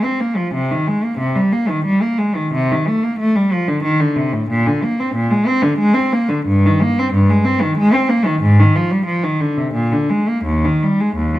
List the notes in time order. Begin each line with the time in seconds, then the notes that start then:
0.04 C4
0.20 A#3
0.36 F3
0.54 C3
0.71 D#3
0.88 G#3
1.04 A#3
1.18 C3
1.35 G3
1.52 A#3
1.69 D#3
1.85 G3
2.02 A#3
2.18 G#3
2.36 D#3
2.53 C3
2.72 D#3
2.88 A3
3.03 A#3
3.19 A3
3.36 G3
3.53 F3
3.68 D3
3.83 D#3
4.00 D3
4.16 C3
4.33 A2
4.49 A#2
4.66 D3
4.83 A#3
5.00 C4
5.15 A#2
5.31 G#3
5.47 C4
5.63 D3
5.79 G#3
5.94 C4
6.13 A#3
6.29 D3
6.46 G2
6.65 D#3
6.82 A#3
6.99 C4
7.13 G2
7.30 G#3
7.45 C4
7.61 D#3
7.78 G#3
7.93 C4
8.09 A#3
8.25 D#3
8.42 G#2
8.60 D#3
8.76 F3
8.91 G3
9.06 F3
9.23 D#3
9.40 D3
9.58 C3
9.74 A#2
9.92 D3
10.10 G#3
10.28 A#3
10.45 D#2
10.65 D#3
10.83 G3
11.01 G#3
11.16 D#2
11.35 F3